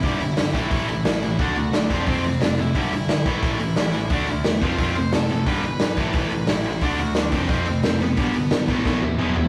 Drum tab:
HH |oooooooo|oooooooo|oooooooo|oooooooo|
SD |--o---o-|--o---o-|--o---o-|--o---o-|
T1 |--------|--------|--------|--------|
T2 |--------|--------|--------|--------|
FT |--------|--------|--------|--------|
BD |o--oo---|o--oo---|o--oo---|o--oo---|

HH |oooooooo|oooooooo|oooo----|
SD |--o---o-|--o---o-|--o-o---|
T1 |--------|--------|-----o--|
T2 |--------|--------|------o-|
FT |--------|--------|-------o|
BD |o--oo---|o--oo---|o--oo---|